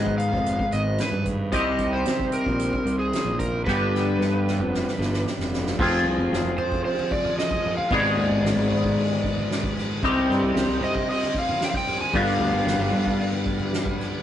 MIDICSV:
0, 0, Header, 1, 6, 480
1, 0, Start_track
1, 0, Tempo, 530504
1, 1385, Time_signature, 4, 2, 24, 8
1, 12871, End_track
2, 0, Start_track
2, 0, Title_t, "Electric slide guitar"
2, 0, Program_c, 0, 29
2, 0, Note_on_c, 0, 75, 84
2, 152, Note_off_c, 0, 75, 0
2, 161, Note_on_c, 0, 77, 89
2, 658, Note_on_c, 0, 75, 85
2, 667, Note_off_c, 0, 77, 0
2, 906, Note_on_c, 0, 71, 67
2, 908, Note_off_c, 0, 75, 0
2, 1129, Note_off_c, 0, 71, 0
2, 1386, Note_on_c, 0, 75, 84
2, 1746, Note_on_c, 0, 72, 81
2, 1758, Note_off_c, 0, 75, 0
2, 2109, Note_off_c, 0, 72, 0
2, 2113, Note_on_c, 0, 70, 86
2, 2702, Note_off_c, 0, 70, 0
2, 2706, Note_on_c, 0, 68, 77
2, 3068, Note_on_c, 0, 70, 83
2, 3081, Note_off_c, 0, 68, 0
2, 3294, Note_off_c, 0, 70, 0
2, 3306, Note_on_c, 0, 71, 78
2, 4717, Note_off_c, 0, 71, 0
2, 5958, Note_on_c, 0, 72, 82
2, 6190, Note_off_c, 0, 72, 0
2, 6201, Note_on_c, 0, 72, 87
2, 6441, Note_on_c, 0, 74, 94
2, 6445, Note_off_c, 0, 72, 0
2, 6680, Note_off_c, 0, 74, 0
2, 6684, Note_on_c, 0, 75, 89
2, 7030, Note_off_c, 0, 75, 0
2, 7034, Note_on_c, 0, 77, 96
2, 7158, Note_off_c, 0, 77, 0
2, 7180, Note_on_c, 0, 74, 86
2, 8807, Note_off_c, 0, 74, 0
2, 9809, Note_on_c, 0, 75, 83
2, 10022, Note_off_c, 0, 75, 0
2, 10055, Note_on_c, 0, 75, 93
2, 10265, Note_off_c, 0, 75, 0
2, 10305, Note_on_c, 0, 77, 100
2, 10533, Note_off_c, 0, 77, 0
2, 10535, Note_on_c, 0, 79, 98
2, 10581, Note_off_c, 0, 79, 0
2, 10588, Note_on_c, 0, 77, 79
2, 10643, Note_off_c, 0, 77, 0
2, 10650, Note_on_c, 0, 79, 102
2, 10859, Note_off_c, 0, 79, 0
2, 10866, Note_on_c, 0, 80, 106
2, 10990, Note_off_c, 0, 80, 0
2, 10996, Note_on_c, 0, 77, 85
2, 12632, Note_off_c, 0, 77, 0
2, 12871, End_track
3, 0, Start_track
3, 0, Title_t, "Transistor combo organ"
3, 0, Program_c, 1, 18
3, 0, Note_on_c, 1, 59, 58
3, 0, Note_on_c, 1, 63, 49
3, 0, Note_on_c, 1, 71, 67
3, 1368, Note_off_c, 1, 59, 0
3, 1368, Note_on_c, 1, 60, 53
3, 1369, Note_off_c, 1, 71, 0
3, 1369, Note_on_c, 1, 72, 60
3, 1373, Note_on_c, 1, 51, 61
3, 3279, Note_off_c, 1, 63, 0
3, 3286, Note_off_c, 1, 60, 0
3, 3286, Note_off_c, 1, 72, 0
3, 3288, Note_off_c, 1, 51, 0
3, 3302, Note_on_c, 1, 59, 49
3, 3307, Note_on_c, 1, 62, 51
3, 3308, Note_on_c, 1, 71, 60
3, 3309, Note_on_c, 1, 55, 56
3, 5212, Note_off_c, 1, 59, 0
3, 5215, Note_off_c, 1, 62, 0
3, 5215, Note_off_c, 1, 71, 0
3, 5216, Note_off_c, 1, 55, 0
3, 5222, Note_on_c, 1, 60, 55
3, 5223, Note_on_c, 1, 53, 64
3, 5225, Note_on_c, 1, 68, 74
3, 5229, Note_on_c, 1, 56, 54
3, 7128, Note_off_c, 1, 53, 0
3, 7128, Note_off_c, 1, 60, 0
3, 7129, Note_off_c, 1, 68, 0
3, 7139, Note_on_c, 1, 59, 58
3, 7140, Note_on_c, 1, 71, 74
3, 7143, Note_on_c, 1, 63, 60
3, 9030, Note_off_c, 1, 56, 0
3, 9043, Note_off_c, 1, 59, 0
3, 9043, Note_off_c, 1, 71, 0
3, 9045, Note_off_c, 1, 63, 0
3, 9065, Note_on_c, 1, 63, 59
3, 9066, Note_on_c, 1, 55, 58
3, 9067, Note_on_c, 1, 72, 72
3, 9071, Note_on_c, 1, 60, 66
3, 10965, Note_off_c, 1, 63, 0
3, 10966, Note_off_c, 1, 72, 0
3, 10968, Note_off_c, 1, 60, 0
3, 10972, Note_on_c, 1, 59, 56
3, 10972, Note_on_c, 1, 71, 67
3, 10975, Note_on_c, 1, 62, 57
3, 12865, Note_off_c, 1, 55, 0
3, 12871, Note_off_c, 1, 59, 0
3, 12871, Note_off_c, 1, 62, 0
3, 12871, Note_off_c, 1, 71, 0
3, 12871, End_track
4, 0, Start_track
4, 0, Title_t, "Clean electric guitar"
4, 0, Program_c, 2, 27
4, 0, Note_on_c, 2, 44, 76
4, 0, Note_on_c, 2, 51, 74
4, 0, Note_on_c, 2, 56, 78
4, 0, Note_on_c, 2, 59, 90
4, 0, Note_on_c, 2, 63, 92
4, 0, Note_on_c, 2, 68, 83
4, 1371, Note_off_c, 2, 51, 0
4, 1374, Note_off_c, 2, 44, 0
4, 1374, Note_off_c, 2, 56, 0
4, 1375, Note_on_c, 2, 48, 85
4, 1377, Note_off_c, 2, 63, 0
4, 1377, Note_on_c, 2, 55, 78
4, 1382, Note_off_c, 2, 59, 0
4, 1382, Note_off_c, 2, 68, 0
4, 1387, Note_on_c, 2, 60, 87
4, 1388, Note_on_c, 2, 63, 81
4, 1395, Note_on_c, 2, 67, 93
4, 3294, Note_off_c, 2, 48, 0
4, 3295, Note_off_c, 2, 55, 0
4, 3300, Note_off_c, 2, 60, 0
4, 3300, Note_off_c, 2, 63, 0
4, 3304, Note_off_c, 2, 67, 0
4, 3317, Note_on_c, 2, 43, 78
4, 3322, Note_on_c, 2, 50, 77
4, 3326, Note_on_c, 2, 55, 78
4, 3327, Note_on_c, 2, 59, 81
4, 3336, Note_on_c, 2, 62, 84
4, 3337, Note_on_c, 2, 67, 93
4, 5224, Note_off_c, 2, 43, 0
4, 5227, Note_off_c, 2, 50, 0
4, 5229, Note_off_c, 2, 55, 0
4, 5230, Note_off_c, 2, 59, 0
4, 5234, Note_off_c, 2, 62, 0
4, 5234, Note_off_c, 2, 67, 0
4, 5240, Note_on_c, 2, 53, 84
4, 5252, Note_on_c, 2, 60, 84
4, 5257, Note_on_c, 2, 65, 99
4, 5265, Note_on_c, 2, 68, 94
4, 7142, Note_off_c, 2, 53, 0
4, 7148, Note_off_c, 2, 60, 0
4, 7150, Note_off_c, 2, 65, 0
4, 7154, Note_off_c, 2, 68, 0
4, 7156, Note_on_c, 2, 44, 91
4, 7161, Note_on_c, 2, 51, 87
4, 7168, Note_on_c, 2, 56, 88
4, 7168, Note_on_c, 2, 59, 98
4, 7169, Note_on_c, 2, 63, 90
4, 7176, Note_on_c, 2, 68, 107
4, 9056, Note_off_c, 2, 44, 0
4, 9059, Note_off_c, 2, 51, 0
4, 9062, Note_off_c, 2, 56, 0
4, 9062, Note_off_c, 2, 59, 0
4, 9063, Note_off_c, 2, 63, 0
4, 9066, Note_off_c, 2, 68, 0
4, 9078, Note_on_c, 2, 48, 82
4, 9086, Note_on_c, 2, 55, 89
4, 9088, Note_on_c, 2, 60, 86
4, 9090, Note_on_c, 2, 63, 95
4, 9094, Note_on_c, 2, 67, 95
4, 10976, Note_off_c, 2, 48, 0
4, 10978, Note_off_c, 2, 55, 0
4, 10981, Note_off_c, 2, 60, 0
4, 10982, Note_off_c, 2, 63, 0
4, 10984, Note_off_c, 2, 67, 0
4, 10984, Note_on_c, 2, 43, 83
4, 10989, Note_on_c, 2, 55, 90
4, 10990, Note_on_c, 2, 50, 94
4, 10995, Note_on_c, 2, 59, 88
4, 11001, Note_on_c, 2, 62, 91
4, 11002, Note_on_c, 2, 67, 85
4, 12871, Note_off_c, 2, 43, 0
4, 12871, Note_off_c, 2, 50, 0
4, 12871, Note_off_c, 2, 55, 0
4, 12871, Note_off_c, 2, 59, 0
4, 12871, Note_off_c, 2, 62, 0
4, 12871, Note_off_c, 2, 67, 0
4, 12871, End_track
5, 0, Start_track
5, 0, Title_t, "Fingered electric bass"
5, 0, Program_c, 3, 33
5, 0, Note_on_c, 3, 44, 78
5, 299, Note_on_c, 3, 29, 90
5, 312, Note_off_c, 3, 44, 0
5, 528, Note_off_c, 3, 29, 0
5, 655, Note_on_c, 3, 32, 87
5, 887, Note_off_c, 3, 32, 0
5, 1014, Note_on_c, 3, 43, 87
5, 1361, Note_off_c, 3, 43, 0
5, 1381, Note_on_c, 3, 36, 96
5, 1840, Note_off_c, 3, 36, 0
5, 1861, Note_on_c, 3, 48, 74
5, 2228, Note_on_c, 3, 34, 90
5, 2241, Note_off_c, 3, 48, 0
5, 2457, Note_off_c, 3, 34, 0
5, 2581, Note_on_c, 3, 36, 99
5, 2814, Note_off_c, 3, 36, 0
5, 2938, Note_on_c, 3, 34, 75
5, 3287, Note_off_c, 3, 34, 0
5, 3315, Note_on_c, 3, 31, 101
5, 3770, Note_off_c, 3, 31, 0
5, 3787, Note_on_c, 3, 43, 77
5, 4156, Note_on_c, 3, 29, 97
5, 4169, Note_off_c, 3, 43, 0
5, 4384, Note_off_c, 3, 29, 0
5, 4511, Note_on_c, 3, 31, 93
5, 4741, Note_off_c, 3, 31, 0
5, 4873, Note_on_c, 3, 29, 80
5, 5216, Note_off_c, 3, 29, 0
5, 5238, Note_on_c, 3, 29, 97
5, 5465, Note_off_c, 3, 29, 0
5, 5470, Note_on_c, 3, 36, 83
5, 5587, Note_off_c, 3, 36, 0
5, 5592, Note_on_c, 3, 29, 92
5, 5708, Note_off_c, 3, 29, 0
5, 5719, Note_on_c, 3, 29, 82
5, 5825, Note_off_c, 3, 29, 0
5, 5830, Note_on_c, 3, 29, 80
5, 5940, Note_off_c, 3, 29, 0
5, 5945, Note_on_c, 3, 41, 76
5, 6178, Note_off_c, 3, 41, 0
5, 7153, Note_on_c, 3, 32, 103
5, 7380, Note_off_c, 3, 32, 0
5, 7385, Note_on_c, 3, 39, 83
5, 7503, Note_off_c, 3, 39, 0
5, 7508, Note_on_c, 3, 32, 86
5, 7615, Note_off_c, 3, 32, 0
5, 7621, Note_on_c, 3, 32, 89
5, 7740, Note_off_c, 3, 32, 0
5, 7747, Note_on_c, 3, 32, 82
5, 7863, Note_off_c, 3, 32, 0
5, 7872, Note_on_c, 3, 44, 85
5, 8099, Note_off_c, 3, 44, 0
5, 9071, Note_on_c, 3, 36, 100
5, 9298, Note_off_c, 3, 36, 0
5, 9312, Note_on_c, 3, 43, 87
5, 9424, Note_off_c, 3, 43, 0
5, 9429, Note_on_c, 3, 36, 94
5, 9540, Note_off_c, 3, 36, 0
5, 9545, Note_on_c, 3, 36, 87
5, 9660, Note_off_c, 3, 36, 0
5, 9667, Note_on_c, 3, 36, 80
5, 9772, Note_off_c, 3, 36, 0
5, 9778, Note_on_c, 3, 48, 86
5, 10010, Note_off_c, 3, 48, 0
5, 10982, Note_on_c, 3, 31, 97
5, 11204, Note_off_c, 3, 31, 0
5, 11209, Note_on_c, 3, 38, 93
5, 11325, Note_off_c, 3, 38, 0
5, 11330, Note_on_c, 3, 31, 88
5, 11436, Note_off_c, 3, 31, 0
5, 11441, Note_on_c, 3, 31, 84
5, 11561, Note_off_c, 3, 31, 0
5, 11567, Note_on_c, 3, 31, 81
5, 11677, Note_off_c, 3, 31, 0
5, 11682, Note_on_c, 3, 43, 85
5, 11920, Note_off_c, 3, 43, 0
5, 12871, End_track
6, 0, Start_track
6, 0, Title_t, "Drums"
6, 58, Note_on_c, 9, 36, 65
6, 148, Note_off_c, 9, 36, 0
6, 175, Note_on_c, 9, 42, 53
6, 266, Note_off_c, 9, 42, 0
6, 298, Note_on_c, 9, 36, 72
6, 389, Note_off_c, 9, 36, 0
6, 419, Note_on_c, 9, 42, 77
6, 509, Note_off_c, 9, 42, 0
6, 536, Note_on_c, 9, 36, 79
6, 626, Note_off_c, 9, 36, 0
6, 652, Note_on_c, 9, 42, 52
6, 660, Note_on_c, 9, 38, 31
6, 743, Note_off_c, 9, 42, 0
6, 750, Note_off_c, 9, 38, 0
6, 890, Note_on_c, 9, 42, 70
6, 897, Note_on_c, 9, 38, 96
6, 980, Note_off_c, 9, 42, 0
6, 987, Note_off_c, 9, 38, 0
6, 1137, Note_on_c, 9, 42, 55
6, 1139, Note_on_c, 9, 36, 71
6, 1227, Note_off_c, 9, 42, 0
6, 1229, Note_off_c, 9, 36, 0
6, 1379, Note_on_c, 9, 42, 91
6, 1380, Note_on_c, 9, 36, 104
6, 1470, Note_off_c, 9, 36, 0
6, 1470, Note_off_c, 9, 42, 0
6, 1615, Note_on_c, 9, 42, 57
6, 1621, Note_on_c, 9, 36, 81
6, 1706, Note_off_c, 9, 42, 0
6, 1712, Note_off_c, 9, 36, 0
6, 1859, Note_on_c, 9, 42, 90
6, 1867, Note_on_c, 9, 38, 97
6, 1950, Note_off_c, 9, 42, 0
6, 1957, Note_off_c, 9, 38, 0
6, 1987, Note_on_c, 9, 36, 78
6, 2077, Note_off_c, 9, 36, 0
6, 2098, Note_on_c, 9, 42, 56
6, 2189, Note_off_c, 9, 42, 0
6, 2227, Note_on_c, 9, 36, 77
6, 2317, Note_off_c, 9, 36, 0
6, 2348, Note_on_c, 9, 42, 81
6, 2438, Note_off_c, 9, 42, 0
6, 2469, Note_on_c, 9, 36, 80
6, 2560, Note_off_c, 9, 36, 0
6, 2593, Note_on_c, 9, 42, 55
6, 2684, Note_off_c, 9, 42, 0
6, 2834, Note_on_c, 9, 42, 71
6, 2841, Note_on_c, 9, 38, 101
6, 2924, Note_off_c, 9, 42, 0
6, 2932, Note_off_c, 9, 38, 0
6, 3073, Note_on_c, 9, 42, 60
6, 3074, Note_on_c, 9, 36, 75
6, 3163, Note_off_c, 9, 42, 0
6, 3165, Note_off_c, 9, 36, 0
6, 3316, Note_on_c, 9, 36, 97
6, 3322, Note_on_c, 9, 38, 57
6, 3406, Note_off_c, 9, 36, 0
6, 3412, Note_off_c, 9, 38, 0
6, 3570, Note_on_c, 9, 38, 54
6, 3660, Note_off_c, 9, 38, 0
6, 3807, Note_on_c, 9, 38, 65
6, 3897, Note_off_c, 9, 38, 0
6, 4047, Note_on_c, 9, 38, 62
6, 4137, Note_off_c, 9, 38, 0
6, 4288, Note_on_c, 9, 38, 78
6, 4378, Note_off_c, 9, 38, 0
6, 4410, Note_on_c, 9, 38, 59
6, 4500, Note_off_c, 9, 38, 0
6, 4532, Note_on_c, 9, 38, 74
6, 4622, Note_off_c, 9, 38, 0
6, 4643, Note_on_c, 9, 38, 63
6, 4733, Note_off_c, 9, 38, 0
6, 4763, Note_on_c, 9, 38, 76
6, 4853, Note_off_c, 9, 38, 0
6, 4883, Note_on_c, 9, 38, 76
6, 4973, Note_off_c, 9, 38, 0
6, 5004, Note_on_c, 9, 38, 80
6, 5094, Note_off_c, 9, 38, 0
6, 5121, Note_on_c, 9, 38, 82
6, 5211, Note_off_c, 9, 38, 0
6, 5236, Note_on_c, 9, 49, 126
6, 5239, Note_on_c, 9, 36, 124
6, 5327, Note_off_c, 9, 49, 0
6, 5329, Note_off_c, 9, 36, 0
6, 5362, Note_on_c, 9, 38, 31
6, 5453, Note_off_c, 9, 38, 0
6, 5477, Note_on_c, 9, 51, 75
6, 5568, Note_off_c, 9, 51, 0
6, 5719, Note_on_c, 9, 51, 101
6, 5726, Note_on_c, 9, 38, 117
6, 5809, Note_off_c, 9, 51, 0
6, 5816, Note_off_c, 9, 38, 0
6, 5955, Note_on_c, 9, 64, 77
6, 5956, Note_on_c, 9, 51, 69
6, 6046, Note_off_c, 9, 51, 0
6, 6046, Note_off_c, 9, 64, 0
6, 6080, Note_on_c, 9, 36, 84
6, 6170, Note_off_c, 9, 36, 0
6, 6198, Note_on_c, 9, 51, 107
6, 6288, Note_off_c, 9, 51, 0
6, 6324, Note_on_c, 9, 63, 78
6, 6414, Note_off_c, 9, 63, 0
6, 6433, Note_on_c, 9, 51, 76
6, 6436, Note_on_c, 9, 36, 91
6, 6524, Note_off_c, 9, 51, 0
6, 6526, Note_off_c, 9, 36, 0
6, 6557, Note_on_c, 9, 63, 67
6, 6557, Note_on_c, 9, 64, 71
6, 6648, Note_off_c, 9, 63, 0
6, 6648, Note_off_c, 9, 64, 0
6, 6672, Note_on_c, 9, 51, 89
6, 6679, Note_on_c, 9, 38, 111
6, 6762, Note_off_c, 9, 51, 0
6, 6769, Note_off_c, 9, 38, 0
6, 6796, Note_on_c, 9, 36, 81
6, 6886, Note_off_c, 9, 36, 0
6, 6913, Note_on_c, 9, 51, 78
6, 6923, Note_on_c, 9, 64, 85
6, 7003, Note_off_c, 9, 51, 0
6, 7014, Note_off_c, 9, 64, 0
6, 7042, Note_on_c, 9, 63, 68
6, 7133, Note_off_c, 9, 63, 0
6, 7151, Note_on_c, 9, 51, 102
6, 7155, Note_on_c, 9, 36, 118
6, 7242, Note_off_c, 9, 51, 0
6, 7246, Note_off_c, 9, 36, 0
6, 7392, Note_on_c, 9, 51, 67
6, 7482, Note_off_c, 9, 51, 0
6, 7639, Note_on_c, 9, 51, 109
6, 7646, Note_on_c, 9, 38, 112
6, 7729, Note_off_c, 9, 51, 0
6, 7736, Note_off_c, 9, 38, 0
6, 7879, Note_on_c, 9, 64, 73
6, 7882, Note_on_c, 9, 51, 71
6, 7970, Note_off_c, 9, 64, 0
6, 7973, Note_off_c, 9, 51, 0
6, 7999, Note_on_c, 9, 36, 84
6, 8090, Note_off_c, 9, 36, 0
6, 8120, Note_on_c, 9, 51, 103
6, 8211, Note_off_c, 9, 51, 0
6, 8249, Note_on_c, 9, 63, 69
6, 8340, Note_off_c, 9, 63, 0
6, 8360, Note_on_c, 9, 36, 83
6, 8365, Note_on_c, 9, 51, 72
6, 8450, Note_off_c, 9, 36, 0
6, 8456, Note_off_c, 9, 51, 0
6, 8483, Note_on_c, 9, 63, 71
6, 8483, Note_on_c, 9, 64, 61
6, 8574, Note_off_c, 9, 63, 0
6, 8574, Note_off_c, 9, 64, 0
6, 8597, Note_on_c, 9, 51, 96
6, 8604, Note_on_c, 9, 38, 106
6, 8687, Note_off_c, 9, 51, 0
6, 8694, Note_off_c, 9, 38, 0
6, 8717, Note_on_c, 9, 36, 82
6, 8808, Note_off_c, 9, 36, 0
6, 8836, Note_on_c, 9, 51, 74
6, 8842, Note_on_c, 9, 64, 73
6, 8844, Note_on_c, 9, 38, 35
6, 8927, Note_off_c, 9, 51, 0
6, 8933, Note_off_c, 9, 64, 0
6, 8934, Note_off_c, 9, 38, 0
6, 8969, Note_on_c, 9, 63, 62
6, 9059, Note_off_c, 9, 63, 0
6, 9073, Note_on_c, 9, 49, 100
6, 9075, Note_on_c, 9, 36, 117
6, 9163, Note_off_c, 9, 49, 0
6, 9165, Note_off_c, 9, 36, 0
6, 9313, Note_on_c, 9, 51, 79
6, 9320, Note_on_c, 9, 38, 33
6, 9403, Note_off_c, 9, 51, 0
6, 9410, Note_off_c, 9, 38, 0
6, 9543, Note_on_c, 9, 51, 115
6, 9551, Note_on_c, 9, 38, 118
6, 9634, Note_off_c, 9, 51, 0
6, 9641, Note_off_c, 9, 38, 0
6, 9787, Note_on_c, 9, 51, 68
6, 9809, Note_on_c, 9, 64, 68
6, 9877, Note_off_c, 9, 51, 0
6, 9900, Note_off_c, 9, 64, 0
6, 9909, Note_on_c, 9, 36, 81
6, 10000, Note_off_c, 9, 36, 0
6, 10030, Note_on_c, 9, 51, 113
6, 10120, Note_off_c, 9, 51, 0
6, 10156, Note_on_c, 9, 38, 38
6, 10165, Note_on_c, 9, 63, 71
6, 10247, Note_off_c, 9, 38, 0
6, 10256, Note_off_c, 9, 63, 0
6, 10262, Note_on_c, 9, 51, 80
6, 10265, Note_on_c, 9, 36, 80
6, 10353, Note_off_c, 9, 51, 0
6, 10356, Note_off_c, 9, 36, 0
6, 10396, Note_on_c, 9, 63, 80
6, 10396, Note_on_c, 9, 64, 68
6, 10486, Note_off_c, 9, 63, 0
6, 10486, Note_off_c, 9, 64, 0
6, 10495, Note_on_c, 9, 51, 94
6, 10502, Note_on_c, 9, 38, 107
6, 10585, Note_off_c, 9, 51, 0
6, 10592, Note_off_c, 9, 38, 0
6, 10621, Note_on_c, 9, 36, 81
6, 10712, Note_off_c, 9, 36, 0
6, 10739, Note_on_c, 9, 51, 85
6, 10746, Note_on_c, 9, 38, 38
6, 10750, Note_on_c, 9, 64, 74
6, 10829, Note_off_c, 9, 51, 0
6, 10837, Note_off_c, 9, 38, 0
6, 10840, Note_off_c, 9, 64, 0
6, 10867, Note_on_c, 9, 63, 69
6, 10958, Note_off_c, 9, 63, 0
6, 10970, Note_on_c, 9, 51, 105
6, 10980, Note_on_c, 9, 36, 121
6, 11061, Note_off_c, 9, 51, 0
6, 11071, Note_off_c, 9, 36, 0
6, 11217, Note_on_c, 9, 51, 76
6, 11228, Note_on_c, 9, 63, 74
6, 11308, Note_off_c, 9, 51, 0
6, 11318, Note_off_c, 9, 63, 0
6, 11455, Note_on_c, 9, 51, 99
6, 11463, Note_on_c, 9, 38, 111
6, 11546, Note_off_c, 9, 51, 0
6, 11553, Note_off_c, 9, 38, 0
6, 11693, Note_on_c, 9, 51, 71
6, 11697, Note_on_c, 9, 64, 72
6, 11784, Note_off_c, 9, 51, 0
6, 11787, Note_off_c, 9, 64, 0
6, 11819, Note_on_c, 9, 36, 79
6, 11909, Note_off_c, 9, 36, 0
6, 11931, Note_on_c, 9, 51, 96
6, 12022, Note_off_c, 9, 51, 0
6, 12059, Note_on_c, 9, 63, 71
6, 12149, Note_off_c, 9, 63, 0
6, 12173, Note_on_c, 9, 51, 69
6, 12178, Note_on_c, 9, 36, 90
6, 12264, Note_off_c, 9, 51, 0
6, 12268, Note_off_c, 9, 36, 0
6, 12299, Note_on_c, 9, 63, 76
6, 12299, Note_on_c, 9, 64, 59
6, 12389, Note_off_c, 9, 63, 0
6, 12389, Note_off_c, 9, 64, 0
6, 12415, Note_on_c, 9, 51, 90
6, 12423, Note_on_c, 9, 38, 111
6, 12506, Note_off_c, 9, 51, 0
6, 12513, Note_off_c, 9, 38, 0
6, 12538, Note_on_c, 9, 36, 81
6, 12629, Note_off_c, 9, 36, 0
6, 12653, Note_on_c, 9, 64, 74
6, 12657, Note_on_c, 9, 51, 79
6, 12664, Note_on_c, 9, 38, 36
6, 12743, Note_off_c, 9, 64, 0
6, 12747, Note_off_c, 9, 51, 0
6, 12755, Note_off_c, 9, 38, 0
6, 12786, Note_on_c, 9, 63, 67
6, 12871, Note_off_c, 9, 63, 0
6, 12871, End_track
0, 0, End_of_file